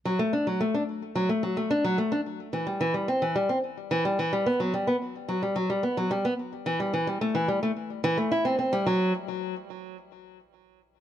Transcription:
\new Staff \with { instrumentName = "Nylon-string guitar" } { \clef bass \time 4/4 \key a \dorian \tempo 4 = 109 fis16 a16 d'16 fis16 a16 d'16 r8 fis16 a16 fis16 a16 d'16 fis16 a16 d'16 | r8 e16 g16 e16 g16 c'16 e16 g16 c'16 r8 e16 g16 e16 g16 | b16 fis16 g16 b16 r8 fis16 g16 fis16 g16 b16 fis16 g16 b16 r8 | e16 g16 e16 g16 a16 e16 g16 a16 r8 e16 a16 e'16 c'16 c'16 g16 |
fis8 r2. r8 | }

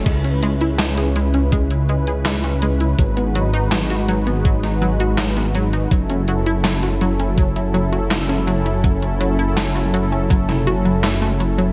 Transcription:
<<
  \new Staff \with { instrumentName = "Analog synth pad" } { \time 4/4 \key fis \dorian \tempo 4 = 82 << { b'1~ | b'1 | a'1~ | a'1 | } \\ { <cis cis' e'>1 | <gis dis' fis'>1 | <fis cis' e'>1~ | <fis cis' e'>1 | } >> }
  \new Staff \with { instrumentName = "Synth arpeggio sound" } { \clef bass \time 4/4 \key fis \dorian gis16 cis'16 gis16 e'16 gis16 gis'16 gis16 cis'16 gis16 e'16 gis16 gis'16 gis16 cis'16 gis16 e'16 | fis16 b16 fis16 dis'16 fis16 fis'16 fis16 b16 fis16 dis'16 fis16 fis'16 fis16 b16 fis16 dis'16 | fis16 cis'16 fis16 e'16 fis16 fis'16 fis16 cis'16 fis16 e'16 fis16 fis'16 fis16 cis'16 fis16 e'16 | fis16 cis'16 fis16 e'16 fis16 fis'16 fis16 cis'16 fis16 e'16 fis'16 fis16 a16 a16 fis16 fis16 | }
  \new Staff \with { instrumentName = "Detuned saw bass" } { \clef bass \time 4/4 \key fis \dorian cis,1 | gis,,1 | fis,,1~ | fis,,1 | }
  \new DrumStaff \with { instrumentName = "Drums" } \drummode { \time 4/4 <cymc hh bd>16 hh16 hh16 hh16 <hc hh sn>16 hh16 hh16 hh16 <hh bd>16 hh16 hh16 hh16 <hc hh sn>16 hh16 hh16 hh16 | <hh bd>16 hh16 hh16 hh16 <hc hh sn>16 hh16 hh16 hh16 <hh bd>16 <hh sn>16 hh16 hh16 <hc hh sn>16 hh16 hh16 hh16 | <hh bd>16 hh16 hh16 hh16 <hc hh sn>16 hh16 hh16 hh16 <hh bd>16 hh16 hh16 hh16 <hc hh sn>16 hh16 hh16 hh16 | <hh bd>16 hh16 hh16 hh16 <hc hh sn>16 hh16 hh16 hh16 <hh bd>16 <hh sn toml>16 hh16 hh16 <hc hh sn>16 hh16 hh16 hh16 | }
>>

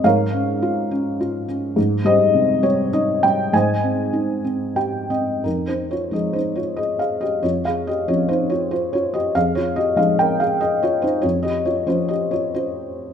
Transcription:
<<
  \new Staff \with { instrumentName = "Felt piano" } { \time 3/4 \key aes \major \tempo 4 = 95 << { f''2~ f''8 r8 | r8 ees''4 des''8 ees''8 g''8 | aes''2 g''8 ees''8 | \key f \minor \tuplet 3/2 { bes'8 c''8 des''8 ees''8 c''8 des''8 ees''8 f''8 ees''8 } |
\tuplet 3/2 { des''8 f''8 ees''8 des''8 c''8 des''8 c''8 des''8 ees''8 } | \tuplet 3/2 { f''8 des''8 ees''8 f''8 g''8 f''8 ees''8 des''8 c''8 } | \tuplet 3/2 { des''8 ees''8 des''8 c''8 ees''8 des''8 } c''4 | } \\ { <bes' des''>2~ <bes' des''>8 r8 | r8 <g' c''>4. r4 | <c'' ees''>2 r4 | \tuplet 3/2 { ees'8 ees'8 f'8 aes'8 ees'8 f'8 aes'8 aes'8 g'8 } |
\tuplet 3/2 { f'8 aes'8 g'8 f'8 ees'8 f'8 f'8 f'8 g'8 } | \tuplet 3/2 { aes'8 f'8 g'8 aes'8 bes'8 aes'8 aes'8 f'8 ees'8 } | \tuplet 3/2 { f'8 g'8 f'8 f'8 g'8 f'8 } f'4 | } >> }
  \new Staff \with { instrumentName = "Felt piano" } { \time 3/4 \key aes \major aes,8 des'8 f'8 des'8 f'8 des'8 | aes,8 g8 c8 g8 ees'8 g8 | aes,8 c'8 ees'8 c'8 g'8 c'8 | \key f \minor f,4 <f aes ees'>2 |
f,4 <f c' des'>2 | f,4 <f aes ees'>2 | f,4 <f c' des'>2 | }
>>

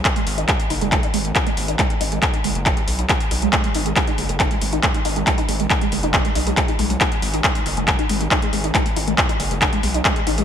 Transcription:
<<
  \new Staff \with { instrumentName = "Synth arpeggio sound" } { \clef bass \time 4/4 \key gis \phrygian \tempo 4 = 138 dis'16 gis16 r16 dis'16 gis16 r16 dis'16 gis16 r16 dis'16 gis16 r16 dis'16 gis16 r16 dis'16 | gis16 r16 dis'16 gis16 r16 dis'16 gis16 r16 dis'16 gis16 r16 dis'16 gis16 r16 dis'16 gis16 | gis16 gis16 dis'16 gis16 gis16 dis'16 gis16 gis16 dis'16 gis16 gis16 dis'16 gis16 gis16 dis'16 gis16 | gis16 dis'16 gis16 gis16 dis'16 gis16 gis16 dis'16 gis16 gis16 dis'16 gis16 gis16 dis'16 gis16 gis16 |
dis'16 gis16 gis16 dis'16 gis16 gis16 dis'16 gis16 gis16 dis'16 gis16 gis16 dis'16 gis16 gis16 dis'16 | gis16 gis16 dis'16 gis16 gis16 dis'16 gis16 gis16 dis'16 gis16 gis16 dis'16 gis16 gis16 dis'16 gis16 | }
  \new Staff \with { instrumentName = "Analog synth bass" } { \clef bass \time 4/4 \key gis \phrygian r8 gis,,8 r8 fis,,16 fis,,8 r16 gis,,8 r8 gis,,8 | r8 gis,,8 r8 fis,,16 fis,,8 r16 b,,8 r8 b,,8 | r8 gis,,8 r8 fis,,16 fis,,8 r16 gis,,8 r8 gis,,8 | r8 gis,,8 r8 fis,,16 fis,,8 r16 b,,8 r8 b,,8 |
r8 gis,,8 r8 fis,,16 fis,,8 r16 gis,,8 r8 gis,,8 | r8 gis,,8 r8 fis,,16 fis,,8 r16 b,,8 r8 a,,8 | }
  \new DrumStaff \with { instrumentName = "Drums" } \drummode { \time 4/4 <hc hh bd>16 hh16 hho16 hh16 <hc hh bd>16 hh16 hho16 hh16 <hc hh bd>16 hh16 hho16 hh16 <hc hh bd>16 hh16 hho16 hh16 | <hc hh bd>16 hh16 hho16 hh16 <hc hh bd>16 hh16 hho16 hh16 <hc hh bd>16 hh16 hho16 hh16 <hc hh bd>16 hh16 hho16 hh16 | <hc hh bd>16 hh16 hho16 hh16 <hc hh bd>16 hh16 hho16 hh16 <hc hh bd>16 hh16 hho16 hh16 <hc hh bd>16 hh16 hho16 hh16 | <hc hh bd>16 hh16 hho16 hh16 <hc hh bd>16 hh16 hho16 hh16 <hc hh bd>16 hh16 hho16 hh16 <hc hh bd>16 hh16 hho16 hh16 |
<hc hh bd>16 hh16 hho16 hh16 <hc hh bd>16 hh16 hho16 hh16 <hc hh bd>16 hh16 hho16 hh16 <hc hh bd>16 hh16 hho16 hh16 | <hc hh bd>16 hh16 hho16 hh16 <hc hh bd>16 hh16 hho16 hh16 <hc hh bd>16 hh16 hho16 hh16 <hc hh bd>16 hh16 hho16 hh16 | }
>>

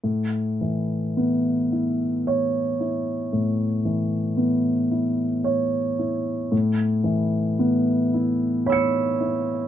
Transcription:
<<
  \new Staff \with { instrumentName = "Grand piano" } { \time 3/4 \key a \major \tempo 4 = 56 r2 cis''4 | r2. | r2 <cis'' b'' e''' cis''''>4 | }
  \new Staff \with { instrumentName = "Grand piano" } { \time 3/4 \key a \major a,8 e8 b8 e'4 e'8 | a,8 e8 b8 e'8 cis''8 e'8 | a,8 e8 b8 e'4 e'8 | }
>>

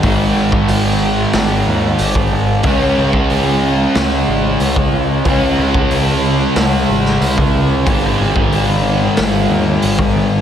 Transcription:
<<
  \new Staff \with { instrumentName = "Distorted electric guitar" } { \clef bass \time 4/4 \key gis \phrygian \tempo 4 = 92 <gis, dis gis>1 | <cis gis cis'>1 | <cis gis cis'>1 | <gis, dis gis>1 | }
  \new Staff \with { instrumentName = "Picked electric bass" } { \clef bass \time 4/4 \key gis \phrygian gis,,8 gis,,8 gis,,4 gis,,8 dis,8 gis,,8 gis,,8 | cis,8 cis,8 cis,4 cis,8 gis,,8 cis,8 cis,8 | cis,8 cis,8 cis,4 cis,8 gis,,8 cis,8 cis,8 | gis,,8 gis,,8 gis,,4 gis,,8 dis,8 gis,,8 gis,,8 | }
  \new DrumStaff \with { instrumentName = "Drums" } \drummode { \time 4/4 <hho bd>8. bd16 hho4 <hho sn>4 hho16 bd8. | <hho bd>8. bd16 hho4 <hho sn>4 hho16 bd8. | <hho bd>8. bd16 hho4 <hho sn>8. sn16 hho16 bd8. | <hho bd>8. bd16 hho4 <hho sn>4 hho16 bd8. | }
>>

